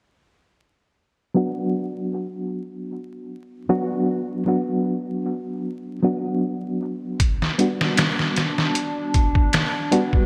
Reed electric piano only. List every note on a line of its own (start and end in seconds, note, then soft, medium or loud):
1.34 3.64 F#3 medium
1.34 3.65 B3 medium
1.34 3.65 D4 medium
1.34 3.65 F#4 medium
3.69 4.43 F#3 medium
3.69 4.43 B3 medium
3.69 4.43 D4 medium
3.69 4.43 F#4 medium
4.46 5.98 F#3 medium
4.46 5.99 B3 medium
4.46 5.99 D4 medium
4.46 5.99 F#4 medium
6.03 7.17 F#3 medium
6.03 7.18 B3 medium
6.03 7.18 D4 medium
6.03 7.18 F#4 medium
7.59 9.88 G3 medium
7.59 9.88 B3 medium
7.59 9.88 D4 medium
7.59 9.89 F#4 medium
9.92 10.26 G3 medium
9.92 10.26 B3 medium
9.92 10.26 D4 medium
9.92 10.26 F#4 loud